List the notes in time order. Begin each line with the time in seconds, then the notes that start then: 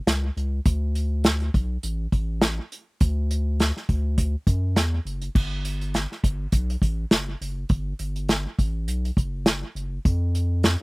0.07 C#2, snare, closed hi-hat
0.37 C#2, closed hi-hat
0.65 D2, kick, closed hi-hat
0.95 closed hi-hat
1.24 snare, closed hi-hat
1.40 closed hi-hat
1.54 B1, kick, closed hi-hat
1.83 A1, closed hi-hat
2.12 A1, kick, closed hi-hat
2.41 snare, closed hi-hat
2.72 closed hi-hat
3.00 D2, kick, closed hi-hat
3.31 closed hi-hat
3.60 snare, closed hi-hat
3.77 snare
3.89 D2, kick, closed hi-hat
4.18 kick, closed hi-hat
4.47 F#2, kick, closed hi-hat
4.76 E2, snare, closed hi-hat
5.05 F#1, closed hi-hat
5.22 closed hi-hat
5.35 G1, kick, crash
5.65 closed hi-hat
5.81 closed hi-hat
5.94 snare, closed hi-hat
6.12 snare
6.23 G1, kick, closed hi-hat
6.52 B1, kick, closed hi-hat
6.70 closed hi-hat
6.82 A1, kick, closed hi-hat
7.11 F#1, snare, closed hi-hat
7.41 F#1, closed hi-hat
7.69 G1, kick, closed hi-hat
7.99 G1, closed hi-hat
8.16 closed hi-hat
8.29 snare, closed hi-hat
8.59 A1, kick, closed hi-hat
8.87 B1, closed hi-hat
9.05 closed hi-hat
9.17 F#1, kick, closed hi-hat
9.46 snare, closed hi-hat
9.75 F#1, closed hi-hat
10.05 F2, kick, closed hi-hat
10.35 closed hi-hat
10.63 snare, closed hi-hat